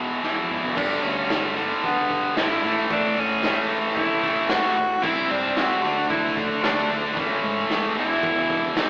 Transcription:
Already playing: fingered electric bass B1, distorted electric guitar E2 B2 E3, tenor saxophone G#3
0.22 fingered electric bass E1, distorted electric guitar E2 B2 E3, tenor saxophone E4, snare
0.37 high tom
0.46 fingered electric bass G#1, distorted electric guitar E2 B2, tonewheel organ C4 D4
0.51 distorted electric guitar E3, tonewheel organ E4 F4, mid tom
0.58 tonewheel organ G4 A4
0.64 tonewheel organ B4 C5, floor tom
0.69 tonewheel organ D5 E5
0.74 fingered electric bass G1, distorted electric guitar G2 D3, tonewheel organ D3 A3 G4 F5, tenor saxophone D4, kick, crash
0.78 distorted electric guitar G3, tonewheel organ B4
1.02 fingered electric bass D2, tenor saxophone C#4, open hi-hat
1.30 fingered electric bass G1, snare, open hi-hat
1.56 distorted electric guitar G2 D3 G3, open hi-hat
1.84 fingered electric bass G1, tenor saxophone B3, kick, open hi-hat
2.10 kick, open hi-hat
2.36 fingered electric bass G1, distorted electric guitar G2 D3 G3, tenor saxophone E4, snare, open hi-hat
2.50 snare
2.63 fingered electric bass A1, distorted electric guitar A2 E3 A3, tonewheel organ A3 C#4 C#5, open hi-hat
2.91 fingered electric bass A1, tenor saxophone D4, kick, open hi-hat
3.17 fingered electric bass E2, tenor saxophone C#4, open hi-hat
3.43 fingered electric bass A1, distorted electric guitar A2 E3, snare, open hi-hat
3.47 distorted electric guitar A3
3.69 open hi-hat
3.95 fingered electric bass A1, tenor saxophone E4, kick, open hi-hat
4.23 distorted electric guitar A2 E3 A3, kick, open hi-hat
4.49 fingered electric bass A1, tenor saxophone F#4, snare, open hi-hat
4.63 snare
4.77 fingered electric bass A1, open hi-hat
5.02 fingered electric bass C2, distorted electric guitar C3 G3 C4, tonewheel organ G3 C4 E4 C5, tenor saxophone E4, kick, crash
5.30 fingered electric bass G2, tenor saxophone D4, open hi-hat
5.56 fingered electric bass C2, tenor saxophone F#4, snare, open hi-hat
5.81 fingered electric bass D2, distorted electric guitar D3 A3 D4, tonewheel organ F#3 A3 D4 A4, open hi-hat
6.09 fingered electric bass D2, tenor saxophone E4, kick, open hi-hat
6.37 tenor saxophone D4, kick, open hi-hat
6.62 fingered electric bass D2, distorted electric guitar D3 A3 D4, tenor saxophone D4, snare, open hi-hat
6.78 snare
6.90 fingered electric bass D2, open hi-hat
7.14 fingered electric bass C#2, distorted electric guitar A2 E3 A3, tonewheel organ A3 C#4, kick, open hi-hat
7.18 tonewheel organ E3 A4, tenor saxophone C#4
7.43 fingered electric bass G#2, open hi-hat
7.69 fingered electric bass C#2, snare, open hi-hat
7.95 fingered electric bass E1, distorted electric guitar E2 B2 E3, tonewheel organ E3 G#3 B3 G#4, open hi-hat
8.00 tenor saxophone E4
8.23 fingered electric bass E1, kick, open hi-hat
8.50 kick, open hi-hat
8.76 fingered electric bass E1, distorted electric guitar E2 B2 E3, tenor saxophone E4, snare, open hi-hat

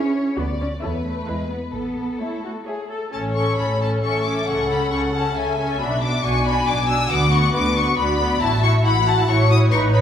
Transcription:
Already playing: cello section C#4, viola section E4 G#4, violin section C#5 G#5
0.37 double bass section D2, cello section B3, viola section F#4, violin section D5 B5
0.61 cello section C#4
0.82 double bass section E2, cello section B3, viola section E4 A4, violin section B4 C#5 E5
1.05 cello section A3
1.27 double bass section E2, cello section G#3, viola section E4 B4, violin section B4 E5
1.50 cello section B3
1.72 double bass section A1, cello section B3, violin section A4
2.20 cello section A3, viola section E4, violin section C#5 E5
2.44 viola section F#4
2.66 viola section G#4, violin section C#5 E5
2.90 viola section A4
3.12 double bass section A1, cello section A2, viola section C#4 A4, violin section C#5 A5
3.35 viola section C#4 A4, violin section C#6
3.57 double bass section A1, cello section A2, viola section C#4 A4, violin section B5
3.79 viola section C#4 A4, violin section A5
4.02 double bass section A1, cello section A2, viola section C#4 A4, violin section E5 C#6
4.25 viola section C#4 A4, violin section D6
4.46 double bass section C#2, cello section C#3, viola section C#4 A4, violin section F#5 C#6
4.70 viola section C#4 A4, violin section B5
4.91 double bass section C#2, cello section C#3, viola section C#4 A4, violin section C#6
5.13 viola section C#4 A4, violin section A5
5.35 double bass section C#2, cello section C#3, viola section C#4 A4, violin section E5 G#5
5.59 viola section C#4 A4
5.80 double bass section B1, cello section B2, viola section D4 F#4, violin section B5
6.02 viola section D4 F#4, violin section D6
6.23 double bass section B1, cello section B2, viola section D4 F#4, violin section G#5 C#6
6.45 viola section D4 F#4, violin section B5
6.67 double bass section B1, cello section B2, viola section D4 F#4, violin section D6
6.89 viola section D4 F#4, violin section E6
7.10 double bass section D2, cello section D3, viola section B3 F#4, violin section F#5 D6
7.31 viola section B3 F#4, violin section C#6
7.52 double bass section D2, cello section D3, viola section B3 F#4, violin section B4 D6
7.75 viola section B3 F#4, violin section C#6
7.97 double bass section D2, cello section D3, viola section B3 F#4, violin section D5 B5
8.19 viola section B3 F#4
8.39 double bass section A1, cello section A2, viola section E4 F#4, violin section E5 A5
8.62 viola section E4 F#4, violin section C#6
8.83 double bass section A1, cello section A2, viola section E4 F#4, violin section F#5 B5
9.05 viola section E4 F#4, violin section A5
9.28 double bass section A1, cello section A2, viola section E4 F#4, violin section C#5 C#6
9.50 viola section E4 F#4, violin section D#6
9.71 double bass section A1, cello section A2, viola section D#4 B4, violin section C#6
9.94 viola section D#4 B4, violin section B5

